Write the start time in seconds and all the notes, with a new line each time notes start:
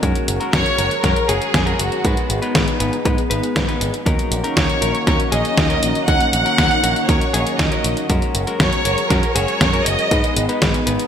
Already playing: F#4
0.02 F#2 F#3 G#3 C#4 F#4 G#4 A#4 C#5, kick, closed hi-hat
0.15 closed hi-hat
0.28 F#1, closed hi-hat
0.40 G#3 C#4 F#4 A#4, closed hi-hat
0.53 F#2 C#5, kick, snare, closed hi-hat
0.66 closed hi-hat
0.78 F#1 G#3 C#4 F#4 A#4, closed hi-hat
0.91 closed hi-hat
1.03 F#2 G#3 C#4 F#4 A#4, kick, snare, closed hi-hat
1.16 closed hi-hat
1.29 F#1 G#3 C#4 F#4 G#4, closed hi-hat
1.42 closed hi-hat
1.54 F#2, kick, snare, closed hi-hat
1.66 G#3 C#4 F#4 A#4, closed hi-hat
1.79 F#1 F#4, closed hi-hat
1.92 closed hi-hat
2.04 G#2 G#3 B3 D#4 B4, kick, closed hi-hat
2.17 closed hi-hat
2.30 G#1, closed hi-hat
2.42 G#3 B3 D#4 B4, closed hi-hat
2.55 G#2, kick, snare, closed hi-hat
2.68 closed hi-hat
2.80 G#1 G#3 B3 D#4 B4, closed hi-hat
2.93 closed hi-hat
3.05 G#2 G#3 B3 D#4 B4, kick, closed hi-hat
3.18 closed hi-hat
3.30 G#1 G#3 B3 D#4 B4, closed hi-hat
3.43 closed hi-hat
3.56 G#2, kick, snare, closed hi-hat
3.68 G#3 B3 D#4 B4, closed hi-hat
3.81 G#1, closed hi-hat
3.94 closed hi-hat
4.06 D#2 D#3 F#3 A#3 C#4 D#4 F#4 A#4, kick, closed hi-hat
4.19 closed hi-hat
4.31 A#1, closed hi-hat
4.44 F#3 C#4 D#4 A#4, closed hi-hat
4.57 D#2 C#5, kick, snare, closed hi-hat
4.70 closed hi-hat
4.82 A#1 F#3 C#4 D#4 A#4, closed hi-hat
4.95 closed hi-hat
5.07 D#2 F#3 C#4 D#4 A#4 C#5, kick, snare, closed hi-hat
5.20 closed hi-hat
5.32 A#1 F#3 C#4 D#4 G#4 D#5, closed hi-hat
5.45 closed hi-hat
5.58 D#2, kick, snare, closed hi-hat
5.70 F#3 C#4 D#4 A#4, closed hi-hat
5.83 A#1, closed hi-hat
5.95 closed hi-hat
6.07 D#2 F#3 C#4 D#4 A#4 F#5, kick, closed hi-hat
6.21 closed hi-hat
6.33 A#1 F#5, closed hi-hat
6.45 F#3 C#4 D#4 A#4, closed hi-hat
6.58 D#2, kick, snare, closed hi-hat
6.71 closed hi-hat
6.83 A#1 F#3 C#4 D#4 A#4, closed hi-hat
6.96 closed hi-hat
7.08 D#2 F#3 C#4 D#4 A#4 C#5, kick, closed hi-hat
7.21 closed hi-hat
7.33 A#1 F#3 C#4 D#4 G#4, closed hi-hat
7.47 closed hi-hat
7.59 D#2 D#5, kick, snare, closed hi-hat
7.71 F#3 C#4 D#4 A#4, closed hi-hat
7.84 A#1, closed hi-hat
7.97 closed hi-hat
8.09 F#2 F#3 G#3 C#4 F#4 G#4 A#4 C#5, kick, closed hi-hat
8.22 closed hi-hat
8.35 F#1, closed hi-hat
8.47 G#3 C#4 F#4 A#4, closed hi-hat
8.60 F#2 C#5, kick, snare, closed hi-hat
8.73 closed hi-hat
8.85 F#1 G#3 C#4 F#4 A#4, closed hi-hat
8.98 closed hi-hat
9.10 F#2 G#3 C#4 F#4 A#4, kick, snare, closed hi-hat
9.23 closed hi-hat
9.35 F#1 G#3 C#4 F#4 G#4 C#5, closed hi-hat
9.48 closed hi-hat
9.61 F#2, kick, snare, closed hi-hat
9.73 G#3 C#4 F#4 A#4, closed hi-hat
9.86 F#1 D#5, closed hi-hat
9.99 closed hi-hat
10.11 G#2 G#3 B3 D#4 B4, kick, closed hi-hat
10.24 closed hi-hat
10.36 G#1, closed hi-hat
10.49 G#3 B3 D#4 B4, closed hi-hat
10.62 G#2, kick, snare, closed hi-hat
10.74 closed hi-hat
10.86 G#1 G#3 B3 D#4 B4, closed hi-hat
10.99 closed hi-hat